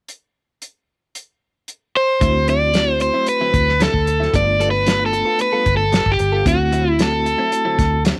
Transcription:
0.08 closed hi-hat
0.62 closed hi-hat
1.15 closed hi-hat
1.68 closed hi-hat
1.97 overdriven electric guitar C5
2.21 fingered electric bass D2, clean electric guitar D3 F#3 C4 E4, reed electric piano A3 C4 E4 F#4, kick, closed hi-hat
2.35 muted clean electric guitar stroke
2.48 clean electric guitar D3 F#3 C4 E4, overdriven electric guitar D5, closed hi-hat
2.62 muted clean electric guitar stroke
2.74 reed electric piano A3 C4 F#4, snare, closed hi-hat
2.88 muted clean electric guitar stroke
3.00 overdriven electric guitar C5, muted clean electric guitar stroke, closed hi-hat
3.14 clean electric guitar F#3 C4 E4
3.27 overdriven electric guitar B4, muted clean electric guitar stroke, closed hi-hat
3.41 clean electric guitar D3 F#3 C4 E4
3.54 fingered electric bass D2, kick, closed hi-hat
3.69 snare
3.80 clean electric guitar D3 F#3 C4 E4, overdriven electric guitar A4, snare, closed hi-hat
3.94 fingered electric bass D2, kick
4.07 muted clean electric guitar stroke, closed hi-hat
4.20 clean electric guitar F#3 C4 E4, snare
4.33 fingered electric bass G1, clean electric guitar G3 B3 F4 A4, reed electric piano A3 B3 D4 F4, overdriven electric guitar D5, kick, closed hi-hat
4.46 muted clean electric guitar stroke
4.59 clean electric guitar G3 B3 F4 A4, closed hi-hat
4.71 overdriven electric guitar B4, muted clean electric guitar stroke
4.86 reed electric piano A3 B3 D4 F4, snare, closed hi-hat
4.99 muted clean electric guitar stroke
5.06 overdriven electric guitar A4
5.13 muted clean electric guitar stroke, closed hi-hat
5.25 clean electric guitar B3 F4 A4
5.39 overdriven electric guitar B4, muted clean electric guitar stroke, closed hi-hat
5.52 clean electric guitar G3 B3 F4 A4
5.66 fingered electric bass G1, kick, closed hi-hat
5.77 overdriven electric guitar A4
5.92 clean electric guitar G3 B3 F4 A4, snare, closed hi-hat
6.06 fingered electric bass G1, muted clean electric guitar stroke, kick
6.12 overdriven electric guitar G4
6.19 fingered electric bass G1, muted clean electric guitar stroke, closed hi-hat
6.32 clean electric guitar B3 F4 A4
6.45 fingered electric bass D2, clean electric guitar D3 F#3 C4 E4, reed electric piano A3 C4 E4 F#4, overdriven electric guitar F#4, kick, closed hi-hat
6.59 muted clean electric guitar stroke
6.72 clean electric guitar D3 F#3 C4 E4, closed hi-hat
6.85 muted clean electric guitar stroke
6.91 overdriven electric guitar E4
6.99 reed electric piano A3 C4 E4 F#4, overdriven electric guitar A4, snare, closed hi-hat
7.12 muted clean electric guitar stroke
7.25 muted clean electric guitar stroke, closed hi-hat
7.38 clean electric guitar F#3 C4 E4
7.51 muted clean electric guitar stroke, closed hi-hat
7.65 clean electric guitar D3 F#3 C4 E4
7.78 fingered electric bass D2, muted clean electric guitar stroke, kick, snare, closed hi-hat
8.05 clean electric guitar D3 F#3 C4 E4, snare, closed hi-hat

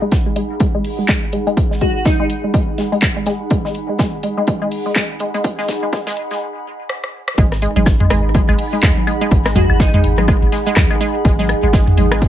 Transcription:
Already playing: ambient pad D#4 G#4 F#5 B5
0.02 synth pluck G#3
0.12 kick, snare, closed hi-hat
0.26 synth pluck G#3
0.36 synth pluck G#3, closed hi-hat
0.60 synth pluck G#3, kick, closed hi-hat
0.74 synth pluck G#3
0.84 closed hi-hat, open hi-hat
0.99 synth pluck G#3
1.08 synth pluck G#3, kick, snare, clap, closed hi-hat
1.33 synth pluck G#3, closed hi-hat
1.47 synth pluck G#3, closed hi-hat
1.57 kick, closed hi-hat
1.71 synth pluck G#3, snare
1.81 synth pluck G#3, digital synth lead F#4, kick, closed hi-hat
1.95 digital synth lead F#4
2.05 synth pluck G#3, digital synth lead D#4, kick, snare, closed hi-hat
2.20 synth pluck G#3, digital synth lead D#4
2.30 closed hi-hat
2.44 synth pluck G#3
2.54 synth pluck G#3, kick, closed hi-hat
2.78 synth pluck G#3, snare, closed hi-hat
2.92 synth pluck G#3, closed hi-hat
3.02 kick, snare, clap, closed hi-hat
3.16 synth pluck G#3
3.26 synth pluck G#3, snare, closed hi-hat
3.50 synth pluck G#3, kick, closed hi-hat
3.65 synth pluck G#3, snare
3.74 closed hi-hat
3.89 synth pluck G#3
3.99 synth pluck G#3, kick, snare, closed hi-hat
4.23 synth pluck G#3, closed hi-hat
4.37 synth pluck G#3
4.47 synth pluck G#3, kick, closed hi-hat
4.62 synth pluck G#3
4.71 closed hi-hat, open hi-hat
4.86 synth pluck G#3
4.95 synth pluck G#3, kick, snare, clap, closed hi-hat
5.19 synth pluck G#3, closed hi-hat
5.34 synth pluck G#3, closed hi-hat
5.44 synth pluck G#3, kick, closed hi-hat
5.58 synth pluck G#3, snare
5.68 kick, snare, closed hi-hat
5.83 synth pluck G#3
5.93 synth pluck G#3, kick, snare, closed hi-hat
6.07 synth pluck G#3, snare, closed hi-hat
6.17 closed hi-hat
6.31 synth pluck G#3, snare, closed hi-hat
6.89 cross-stick
7.04 cross-stick
7.28 cross-stick
7.38 sub bass G#1, synth pluck G#3, ambient pad D#4, kick, closed hi-hat
7.52 ambient pad B5, cross-stick, snare, closed hi-hat
7.61 synth pluck G#3, ambient pad G#4, closed hi-hat
7.76 sub bass G#1, synth pluck G#3, high tom
7.86 kick, snare, closed hi-hat, claves
8.00 synth pluck G#3, closed hi-hat, mid tom
8.06 ambient pad F#5
8.10 sub bass G#1, synth pluck G#3, cross-stick, closed hi-hat
8.34 synth pluck G#3, kick, closed hi-hat, high tom
8.49 sub bass G#1, synth pluck G#3, closed hi-hat, claves
8.58 closed hi-hat, open hi-hat
8.73 synth pluck G#3, closed hi-hat
8.83 sub bass D#2, synth pluck G#3, kick, cross-stick, snare, clap, closed hi-hat
8.97 closed hi-hat, high tom
9.07 synth pluck G#3, closed hi-hat, claves
9.21 synth pluck G#3, closed hi-hat
9.31 sub bass G#1, kick, closed hi-hat
9.45 synth pluck G#3, cross-stick, snare, closed hi-hat
9.55 synth pluck G#3, digital synth lead F#4, kick, closed hi-hat, mid tom, high tom
9.70 sub bass G#1, digital synth lead F#4, claves
9.80 synth pluck G#3, digital synth lead D#4, kick, snare, closed hi-hat
9.94 synth pluck G#3, digital synth lead D#4, closed hi-hat, mid tom
10.04 sub bass G#1, closed hi-hat
10.18 synth pluck G#3, cross-stick, high tom
10.28 synth pluck G#3, kick, closed hi-hat, claves
10.42 sub bass G#1, closed hi-hat
10.52 synth pluck G#3, snare, closed hi-hat
10.66 synth pluck G#3, closed hi-hat
10.76 sub bass D#2, kick, cross-stick, snare, clap, closed hi-hat, high tom
10.91 synth pluck G#3, closed hi-hat, claves
11.00 synth pluck G#3, snare, closed hi-hat
11.15 closed hi-hat
11.25 sub bass G#1, synth pluck G#3, kick, closed hi-hat
11.39 synth pluck G#3, ambient pad D#6, snare, closed hi-hat, high tom
11.49 cross-stick, closed hi-hat, claves
11.63 sub bass G#1, synth pluck G#3
11.73 synth pluck G#3, kick, snare, closed hi-hat
11.87 closed hi-hat, mid tom
11.97 sub bass G#1, synth pluck G#3, closed hi-hat, high tom
12.12 synth pluck G#3, cross-stick, claves
12.22 kick, closed hi-hat

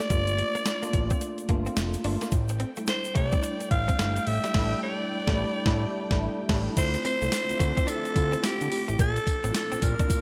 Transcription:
Already playing: tine electric piano A3 A#3 D4 F4 G4, alto saxophone D5
0.10 analog synth bass G1, clean electric guitar G3, tine electric piano A3 A#3 D4 F4, kick, closed hi-hat, shaker
0.27 closed hi-hat, shaker
0.38 muted clean electric guitar stroke, closed hi-hat
0.55 clean electric guitar A#3, closed hi-hat, shaker
0.66 snare, closed hi-hat, shaker
0.83 tine electric piano A3 A#3 D4 F4, clean electric guitar A#3, closed hi-hat, shaker
0.93 analog synth bass A1, muted clean electric guitar stroke, kick, closed hi-hat
1.10 clean electric guitar C4, kick, closed hi-hat, shaker
1.21 muted clean electric guitar stroke, closed hi-hat, shaker
1.38 closed hi-hat, shaker
1.49 analog synth bass G1, tine electric piano A3 A#3 D4 F4, clean electric guitar A#3, kick, closed hi-hat
1.66 clean electric guitar C4, closed hi-hat, shaker
1.77 analog synth bass F1, muted clean electric guitar stroke, snare, closed hi-hat, shaker
1.94 closed hi-hat, shaker
2.04 analog synth bass G1, tine electric piano A3 A#3 D4 F4, clean electric guitar D4, open hi-hat
2.21 clean electric guitar A#3, snare, closed hi-hat, shaker
2.32 analog synth bass A1, string section A3 A4 D5 G5, kick, closed hi-hat, shaker
2.48 muted clean electric guitar stroke, closed hi-hat, shaker
2.60 clean electric guitar C4, closed hi-hat
2.76 tine electric piano G3 A3 D4 E4, clean electric guitar A3, closed hi-hat, shaker
2.87 alto saxophone C5, muted clean electric guitar stroke, snare, closed hi-hat, shaker
3.04 closed hi-hat, shaker
3.15 analog synth bass C2, clean electric guitar A3, alto saxophone D5, kick, closed hi-hat
3.32 tine electric piano G3 A3 D4 E4, clean electric guitar C4, kick, closed hi-hat, shaker
3.43 clean electric guitar D4, closed hi-hat, shaker
3.60 muted clean electric guitar stroke, closed hi-hat, shaker
3.71 analog synth bass A1, alto saxophone F5, kick, closed hi-hat
3.88 clean electric guitar C4, kick, closed hi-hat, shaker
3.98 analog synth bass G1, tine electric piano G3 A3 D4 E4, clean electric guitar A3, snare, closed hi-hat, shaker
4.16 muted clean electric guitar stroke, closed hi-hat, shaker
4.27 analog synth bass A1, alto saxophone E5, open hi-hat
4.44 clean electric guitar G3, snare, closed hi-hat, shaker
4.54 analog synth bass A1, tine electric piano G3 A3 E4, kick, snare, crash
4.61 tine electric piano D4
4.83 alto saxophone D5
5.27 analog synth bass A1, tine electric piano G3 A3 D4 E4, kick, snare
5.66 analog synth bass A1, tine electric piano G3 A3 E4, kick, snare
5.73 tine electric piano D4
6.11 analog synth bass A1, tine electric piano G3 A3 E4, kick, snare
6.18 tine electric piano D4
6.49 analog synth bass A1, tine electric piano G3 A3 D4 E4, kick, snare, crash
6.77 analog synth bass D2, string section D3 F3 C4 D4 E5, tine electric piano A3 C4 E4 F4, alto saxophone C5, kick, closed hi-hat, crash, shaker
6.94 muted clean electric guitar stroke, closed hi-hat, shaker
7.05 clean electric guitar C4, alto saxophone C5, closed hi-hat, tambourine
7.22 analog synth bass C2, clean electric guitar A3, closed hi-hat, shaker
7.32 muted clean electric guitar stroke, snare, closed hi-hat, tambourine, shaker
7.49 analog synth bass D2, tine electric piano A3 C4 E4 F4, closed hi-hat, shaker
7.59 analog synth bass D2, clean electric guitar A3, kick, closed hi-hat, tambourine, shaker
7.77 clean electric guitar C4, kick, closed hi-hat, shaker
7.87 clean electric guitar D4, alto saxophone A4, closed hi-hat, tambourine, shaker
8.05 muted clean electric guitar stroke, closed hi-hat, shaker
8.15 analog synth bass D2, tine electric piano A3 C4 E4 F4, kick, closed hi-hat, tambourine
8.32 clean electric guitar C4, closed hi-hat, shaker
8.43 clean electric guitar C4, alto saxophone G4, snare, closed hi-hat, tambourine, shaker
8.61 analog synth bass D3, muted clean electric guitar stroke, closed hi-hat, shaker
8.71 tine electric piano A3 C4 E4 G4, open hi-hat, tambourine
8.88 analog synth bass A1, clean electric guitar A3, closed hi-hat, shaker
8.98 analog synth bass A#1, string section A#2 D4, clean electric guitar A#3, alto saxophone A4, kick, closed hi-hat, shaker
9.16 closed hi-hat, shaker
9.27 muted clean electric guitar stroke, kick, closed hi-hat, tambourine
9.43 analog synth bass A1, tine electric piano A3 C4 D4 E4, clean electric guitar C4, closed hi-hat, shaker
9.51 tine electric piano F4, snare, closed hi-hat, tambourine, shaker
9.56 alto saxophone A4
9.72 analog synth bass A#1, clean electric guitar C4, closed hi-hat, shaker
9.82 analog synth bass A#1, alto saxophone A#4, muted clean electric guitar stroke, kick, closed hi-hat, tambourine, shaker
9.99 tine electric piano A#3 C4 D4 E4, clean electric guitar D4, kick, closed hi-hat, shaker
10.07 tine electric piano F4, muted clean electric guitar stroke, kick, closed hi-hat, tambourine, shaker

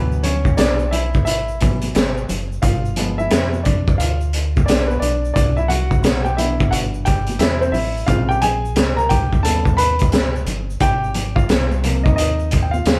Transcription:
Already playing: fingered electric bass D2, grand piano E3 F#3 B3 B4
0.12 shaker
0.23 grand piano C#4 C#5, closed hi-hat, high conga, low conga, shaker
0.45 kick, shaker
0.57 fingered electric bass B1, grand piano D4 D5, snare, closed hi-hat, shaker
0.79 high conga, shaker
0.91 grand piano E4 E5, closed hi-hat, low conga, shaker
1.14 kick, shaker
1.25 fingered electric bass A1, grand piano E4 E5, closed hi-hat, shaker
1.48 shaker
1.61 grand piano E3 F#3 B3, kick, closed hi-hat, shaker
1.82 closed hi-hat, high conga, shaker
1.95 fingered electric bass G#1, snare, closed hi-hat, shaker
2.17 shaker
2.29 fingered electric bass F#1, closed hi-hat, low conga, shaker
2.52 shaker
2.62 fingered electric bass G1, grand piano F4 F5, kick, closed hi-hat, shaker
2.85 shaker
2.96 grand piano F3 G#3 B3, closed hi-hat, high conga, low conga, shaker
3.18 grand piano E4 E5, shaker
3.31 fingered electric bass F2, snare, closed hi-hat, shaker
3.53 high conga, shaker
3.64 grand piano D4 D5, kick, closed hi-hat, low conga, shaker
3.87 kick, shaker
3.98 fingered electric bass D2, grand piano F4 F5, closed hi-hat, shaker
4.21 shaker
4.33 closed hi-hat, shaker
4.56 kick, high conga, shaker
4.66 fingered electric bass B1, grand piano D4 D5, snare, closed hi-hat, shaker
4.87 grand piano B3 B4, shaker
5.00 fingered electric bass B1, grand piano D4 D5, closed hi-hat, low conga, shaker
5.25 shaker
5.34 fingered electric bass C2, grand piano D4 D5, kick, closed hi-hat, shaker
5.57 grand piano E4 E5, shaker
5.68 grand piano F#4 F#5, closed hi-hat, high conga, low conga, shaker
5.91 kick, shaker
6.02 fingered electric bass B1, snare, closed hi-hat, shaker
6.24 grand piano G4 G5, high conga, shaker
6.37 grand piano D3 E3 B3 E4 E5, closed hi-hat, low conga, shaker
6.60 kick, shaker
6.71 fingered electric bass G1, grand piano F#4 F#5, closed hi-hat, shaker
6.94 shaker
7.05 grand piano G4 G5, kick, closed hi-hat, shaker
7.27 closed hi-hat, high conga, shaker
7.39 fingered electric bass E2, grand piano E4 E5, snare, closed hi-hat, shaker
7.61 grand piano C4 C5, shaker
7.72 fingered electric bass A1, grand piano E4 E5, open hi-hat, low conga, shaker
7.97 shaker
8.06 fingered electric bass A#1, grand piano C#3 G#3 C4 F4 F5, kick, closed hi-hat, shaker
8.29 grand piano G4 G5, shaker
8.42 grand piano G#4 G#5, closed hi-hat, high conga, low conga, shaker
8.65 shaker
8.76 fingered electric bass C#2, snare, closed hi-hat, shaker
8.96 grand piano A#4 A#5, high conga, shaker
9.09 grand piano G4 G5, kick, closed hi-hat, low conga, shaker
9.33 kick, shaker
9.43 fingered electric bass D#2, grand piano C#3 G3 B3 A4 A5, closed hi-hat, shaker
9.65 kick, shaker
9.77 grand piano B4 B5, closed hi-hat, shaker
9.99 kick, closed hi-hat, high conga, shaker
10.12 fingered electric bass C#2, snare, closed hi-hat, shaker
10.36 shaker
10.46 fingered electric bass G1, closed hi-hat, low conga, shaker
10.70 shaker
10.80 fingered electric bass G#1, grand piano G4 G5, kick, closed hi-hat, shaker
11.04 shaker
11.14 closed hi-hat, high conga, low conga, shaker
11.36 grand piano F4 F5, kick, shaker
11.49 fingered electric bass C2, snare, closed hi-hat, shaker
11.71 high conga, shaker
11.82 grand piano C3 F3 A#3, closed hi-hat, low conga, shaker
12.04 grand piano D#4 D#5, kick, shaker
12.16 fingered electric bass D#2, grand piano D#4 D#5, closed hi-hat, shaker
12.39 shaker
12.51 kick, closed hi-hat, shaker
12.62 grand piano G5
12.71 grand piano F4 F5, high conga, shaker
12.85 fingered electric bass D#2, snare, closed hi-hat, shaker

